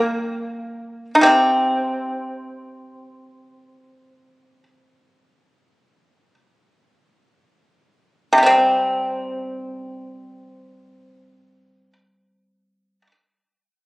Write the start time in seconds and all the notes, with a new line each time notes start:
Already playing: A#3
1.15 D#4
1.21 C3 C4
8.33 C3
8.38 G3
8.43 C4